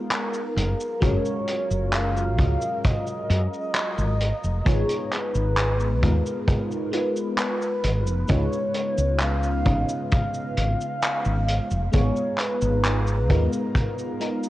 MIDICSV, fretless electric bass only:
0, 0, Header, 1, 2, 480
1, 0, Start_track
1, 0, Tempo, 909091
1, 541, Time_signature, 4, 2, 24, 8
1, 7651, End_track
2, 0, Start_track
2, 0, Title_t, "Fretless electric bass"
2, 0, Program_c, 0, 35
2, 299, Note_on_c, 0, 30, 97
2, 387, Note_off_c, 0, 30, 0
2, 539, Note_on_c, 0, 30, 99
2, 627, Note_off_c, 0, 30, 0
2, 900, Note_on_c, 0, 30, 80
2, 1260, Note_off_c, 0, 30, 0
2, 1260, Note_on_c, 0, 37, 84
2, 1347, Note_off_c, 0, 37, 0
2, 1740, Note_on_c, 0, 42, 104
2, 1828, Note_off_c, 0, 42, 0
2, 2101, Note_on_c, 0, 32, 102
2, 2272, Note_off_c, 0, 32, 0
2, 2342, Note_on_c, 0, 29, 82
2, 2427, Note_off_c, 0, 29, 0
2, 2460, Note_on_c, 0, 32, 95
2, 2547, Note_off_c, 0, 32, 0
2, 2820, Note_on_c, 0, 32, 84
2, 3181, Note_off_c, 0, 32, 0
2, 3181, Note_on_c, 0, 39, 82
2, 3268, Note_off_c, 0, 39, 0
2, 4139, Note_on_c, 0, 32, 100
2, 4260, Note_off_c, 0, 32, 0
2, 4260, Note_on_c, 0, 29, 85
2, 4346, Note_off_c, 0, 29, 0
2, 4382, Note_on_c, 0, 37, 92
2, 4468, Note_off_c, 0, 37, 0
2, 4740, Note_on_c, 0, 37, 80
2, 5100, Note_on_c, 0, 32, 81
2, 5108, Note_off_c, 0, 37, 0
2, 5187, Note_off_c, 0, 32, 0
2, 5581, Note_on_c, 0, 32, 100
2, 5668, Note_off_c, 0, 32, 0
2, 5942, Note_on_c, 0, 32, 97
2, 6113, Note_off_c, 0, 32, 0
2, 6181, Note_on_c, 0, 29, 81
2, 6266, Note_off_c, 0, 29, 0
2, 6303, Note_on_c, 0, 32, 97
2, 6389, Note_off_c, 0, 32, 0
2, 6662, Note_on_c, 0, 32, 83
2, 7020, Note_off_c, 0, 32, 0
2, 7020, Note_on_c, 0, 39, 85
2, 7108, Note_off_c, 0, 39, 0
2, 7651, End_track
0, 0, End_of_file